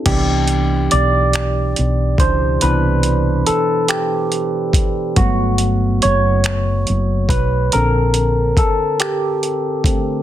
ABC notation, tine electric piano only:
X:1
M:6/8
L:1/8
Q:3/8=47
K:Clyd
V:1 name="Tine electric piano"
G2 d3 c | B2 A G2 z | F2 _d3 B | _B2 A G2 z |]
V:2 name="Tine electric piano"
[E,B,D] z4 [B,,E,D] | [E,B,D]6 | [F,A,B,] z4 z | [D,CA] z4 [D,A,C] |]